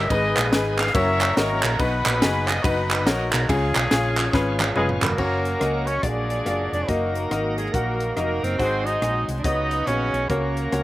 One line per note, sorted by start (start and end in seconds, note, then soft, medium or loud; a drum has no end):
0.00 0.10 E5 loud
0.09 0.33 G#1 loud
0.09 0.75 G#2 medium
0.09 0.93 B3 medium
0.09 0.93 D#4 medium
0.09 0.42 D#4 medium
0.09 0.93 G#4 medium
0.09 0.42 G#4 medium
0.09 0.91 G#4 medium
0.09 0.91 B4 medium
0.09 0.43 B4 medium
0.09 0.48 D#5 loud
0.09 kick medium
0.09 ride medium
0.37 0.51 A#1 medium
0.37 clap loud
0.37 ride medium
0.52 0.89 G#1 medium
0.52 0.84 D#4 medium
0.52 0.84 G#4 medium
0.52 0.85 B4 medium
0.52 snare loud
0.52 ride medium
0.79 0.94 F5 loud
0.79 snare soft
0.79 clap medium
0.79 ride medium
0.87 snare soft
0.94 1.31 F#1 loud
0.94 1.78 F#3 medium
0.94 1.27 A#3 medium
0.94 1.78 A#3 medium
0.94 1.27 C#4 medium
0.94 1.78 C#4 medium
0.94 1.27 E4 medium
0.94 1.78 E4 medium
0.94 1.27 F#4 medium
0.94 1.78 A#4 medium
0.94 1.35 A#4 medium
0.94 1.76 C#5 medium
0.94 1.27 C#5 medium
0.94 1.37 E5 loud
0.94 kick loud
0.94 ride medium
1.21 clap loud
1.21 ride medium
1.37 1.60 G#1 medium
1.37 1.69 A#3 medium
1.37 1.69 C#4 medium
1.37 1.69 E4 medium
1.37 1.69 F#4 medium
1.37 1.62 A#4 loud
1.37 1.69 D#5 medium
1.37 snare loud
1.37 ride medium
1.63 1.77 A#1 loud
1.63 1.78 A#4 loud
1.63 clap loud
1.63 ride medium
1.79 2.02 B1 loud
1.79 2.44 B2 medium
1.79 3.45 B3 medium
1.79 3.45 D#4 medium
1.79 2.11 D#4 medium
1.79 2.61 D#4 medium
1.79 1.86 F4 medium
1.79 2.11 F#4 medium
1.79 2.61 F#4 medium
1.79 2.48 B4 loud
1.79 2.12 B4 medium
1.79 kick loud
1.79 ride medium
1.84 3.48 F#4 medium
2.06 2.19 A#1 loud
2.06 clap loud
2.06 ride medium
2.21 2.58 F#1 loud
2.21 2.53 D#4 medium
2.21 2.54 F#4 medium
2.21 2.54 G#4 medium
2.21 snare loud
2.21 ride medium
2.48 2.64 D#5 loud
2.48 clap medium
2.48 ride medium
2.64 3.07 F#1 loud
2.64 2.96 D#4 medium
2.64 3.45 D#4 medium
2.64 2.96 F#4 medium
2.64 3.45 F#4 medium
2.64 3.07 B4 loud
2.64 2.96 B4 medium
2.64 kick loud
2.64 ride medium
2.91 clap medium
2.91 ride medium
3.06 3.29 A#1 loud
3.06 3.38 D#4 medium
3.06 3.38 F#4 medium
3.06 3.31 A#4 loud
3.06 3.39 C#5 medium
3.06 snare loud
3.06 ride medium
3.32 3.47 B1 medium
3.32 3.47 A#4 medium
3.32 clap loud
3.32 ride medium
3.49 3.71 C#2 loud
3.49 4.14 C#3 medium
3.49 5.15 G#3 medium
3.49 3.81 C#4 medium
3.49 5.15 C#4 medium
3.49 4.72 C#4 medium
3.49 5.15 F4 medium
3.49 3.81 F4 medium
3.49 4.72 F4 medium
3.49 4.76 G#4 loud
3.49 3.81 G#4 medium
3.49 kick loud
3.49 ride medium
3.75 3.89 B1 medium
3.75 clap loud
3.75 ride medium
3.91 4.27 A#1 loud
3.91 4.23 C#4 medium
3.91 4.23 F4 medium
3.91 4.23 G#4 medium
3.91 snare loud
3.91 ride medium
4.17 clap medium
4.17 ride medium
4.33 4.70 G#1 loud
4.33 4.65 C#4 medium
4.33 4.66 F4 medium
4.33 4.66 B4 loud
4.33 kick loud
4.33 snare medium
4.60 clap loud
4.60 high tom medium
4.76 4.99 F#1 loud
4.76 4.89 G#3 medium
4.76 5.08 C#4 medium
4.76 5.08 F4 medium
4.76 4.88 G#4 medium
4.76 5.08 B4 medium
4.76 5.01 G#5 medium
4.76 mid tom medium
4.89 mid tom medium
5.02 5.16 F1 medium
5.02 5.89 A#3 medium
5.02 5.84 C#4 medium
5.02 5.84 F#4 medium
5.02 5.84 A#4 medium
5.02 5.17 B5 medium
5.02 clap loud
5.02 floor tom loud
5.10 floor tom medium
5.17 5.54 F#1 medium
5.17 6.01 F#3 medium
5.17 8.56 F#3 medium
5.17 6.01 A#3 soft
5.17 5.50 A#3 medium
5.17 8.56 A#3 medium
5.17 6.01 C#4 medium
5.17 5.50 C#4 medium
5.17 6.03 C#4 medium
5.17 6.03 F#4 medium
5.17 5.50 F#4 medium
5.17 6.01 A#4 medium
5.17 5.51 C#5 medium
5.17 kick medium
5.17 crash medium
5.45 closed hi-hat medium
5.60 5.97 C#2 medium
5.60 5.92 A#3 medium
5.60 5.93 C#4 medium
5.60 5.93 F#4 medium
5.60 5.93 D#5 medium
5.60 cross-stick loud
5.60 closed hi-hat medium
5.87 6.05 C#4 medium
5.87 6.03 C#5 medium
5.87 closed hi-hat medium
6.03 6.39 A#1 loud
6.03 6.68 A#2 medium
6.03 6.87 F#3 soft
6.03 6.88 G#3 medium
6.03 6.35 A#3 medium
6.03 6.87 A#3 medium
6.03 6.09 C#4 soft
6.03 6.73 D4 medium
6.03 6.88 D4 medium
6.03 6.85 F4 medium
6.03 6.35 F#4 medium
6.03 6.87 G#4 medium
6.03 6.35 G#4 medium
6.03 6.85 G#4 medium
6.03 6.71 D5 medium
6.03 6.35 D5 medium
6.03 kick loud
6.03 closed hi-hat medium
6.08 6.89 D4 medium
6.30 closed hi-hat medium
6.45 6.69 F#1 medium
6.45 6.78 A#3 medium
6.45 6.78 F#4 medium
6.45 6.78 G#4 medium
6.45 6.78 F5 medium
6.45 cross-stick medium
6.45 closed hi-hat medium
6.72 6.86 F1 medium
6.72 6.90 D4 medium
6.72 6.87 D5 medium
6.72 closed hi-hat medium
6.88 7.25 F#1 medium
6.88 8.58 D#3 medium
6.88 8.56 F#3 medium
6.88 7.20 A#3 medium
6.88 8.56 A#3 medium
6.88 7.31 A#3 medium
6.88 8.56 D#4 soft
6.88 7.21 D#4 medium
6.88 7.70 D#4 medium
6.88 10.27 D#4 medium
6.88 7.21 F#4 medium
6.88 7.70 F#4 medium
6.88 7.57 A#4 medium
6.88 8.56 A#4 medium
6.88 7.21 D#5 medium
6.88 kick medium
6.88 closed hi-hat medium
7.15 closed hi-hat medium
7.31 7.67 G#1 medium
7.31 7.63 A#3 medium
7.31 7.56 A#3 medium
7.31 7.63 D#4 medium
7.31 7.63 F#4 medium
7.31 7.64 D#5 medium
7.31 cross-stick medium
7.31 closed hi-hat medium
7.57 7.75 G#3 medium
7.57 7.73 G#4 medium
7.57 cross-stick soft
7.57 closed hi-hat medium
7.66 cross-stick soft
7.73 8.10 A#1 medium
7.73 8.16 A#3 medium
7.73 8.06 A#3 medium
7.73 8.06 D#4 medium
7.73 8.16 D#4 medium
7.73 8.06 F#4 medium
7.73 8.16 F#4 medium
7.73 8.15 A#4 medium
7.73 8.06 F#5 medium
7.73 kick loud
7.73 closed hi-hat medium
8.00 closed hi-hat medium
8.16 8.39 F1 medium
8.16 8.48 A#3 medium
8.16 8.45 A#3 medium
8.16 8.48 D#4 medium
8.16 8.57 D#4 medium
8.16 8.49 F#4 medium
8.16 8.57 F#4 medium
8.16 8.56 A#4 medium
8.16 8.49 D#5 medium
8.16 cross-stick medium
8.16 closed hi-hat medium
8.43 8.57 F#1 medium
8.43 8.87 C4 loud
8.43 closed hi-hat medium
8.58 8.96 G#1 medium
8.58 9.24 G#2 medium
8.58 9.43 F#3 medium
8.58 8.91 G#3 medium
8.58 9.44 G#3 medium
8.58 9.43 C4 medium
8.58 9.44 C4 medium
8.58 9.42 D#4 medium
8.58 8.91 D#4 medium
8.58 9.41 D#4 medium
8.58 8.65 F#4 medium
8.58 8.91 F#4 medium
8.58 8.86 F#4 medium
8.58 8.85 C5 loud
8.58 8.92 C5 medium
8.58 kick medium
8.58 closed hi-hat medium
8.64 9.45 G#4 medium
8.85 9.28 D#4 medium
8.85 9.41 F#4 medium
8.85 9.41 C5 medium
8.85 9.28 D#5 loud
8.85 closed hi-hat medium
9.01 9.24 A#1 medium
9.01 9.34 G#3 medium
9.01 9.34 D#4 medium
9.01 9.34 F#4 medium
9.01 9.34 G#4 medium
9.01 cross-stick medium
9.01 closed hi-hat medium
9.28 9.42 C2 medium
9.28 cross-stick soft
9.28 closed hi-hat medium
9.36 9.46 D4 medium
9.36 cross-stick soft
9.44 9.81 C#2 medium
9.44 10.10 C#3 medium
9.44 10.83 F#3 medium
9.44 10.28 F#3 medium
9.44 10.29 B3 medium
9.44 9.76 B3 medium
9.44 10.83 C#4 medium
9.44 10.28 C#4 medium
9.44 9.88 D#4 loud
9.44 9.77 D#4 medium
9.44 10.28 D#4 medium
9.44 9.77 F#4 medium
9.44 9.87 F#4 medium
9.44 10.28 B4 medium
9.44 10.26 B4 medium
9.44 9.77 C#5 medium
9.44 9.84 D#5 medium
9.44 kick loud
9.44 closed hi-hat medium
9.71 closed hi-hat medium
9.87 10.10 A#1 medium
9.87 10.19 B3 medium
9.87 10.29 C#4 medium
9.87 10.19 D#4 medium
9.87 10.19 F#4 medium
9.87 10.27 F#4 medium
9.87 10.27 G#4 medium
9.87 10.29 C#5 medium
9.87 10.19 C#5 medium
9.87 cross-stick medium
9.87 closed hi-hat medium
10.13 10.27 B1 medium
10.13 closed hi-hat medium
10.29 10.66 C#2 medium
10.29 10.83 C#3 medium
10.29 10.83 F#3 medium
10.29 10.83 A#3 medium
10.29 10.62 A#3 medium
10.29 10.83 A#3 soft
10.29 10.83 C#4 soft
10.29 10.62 C#4 medium
10.29 10.83 C#4 medium
10.29 10.83 F#4 medium
10.29 10.62 F#4 medium
10.29 10.83 F#4 medium
10.29 10.83 A#4 medium
10.29 10.62 C#5 medium
10.29 kick medium
10.29 closed hi-hat medium
10.57 closed hi-hat medium
10.72 10.83 C#2 medium
10.72 10.83 A#3 medium
10.72 10.83 C#4 medium
10.72 10.83 F#4 medium
10.72 10.83 C#5 medium
10.72 cross-stick medium
10.72 closed hi-hat medium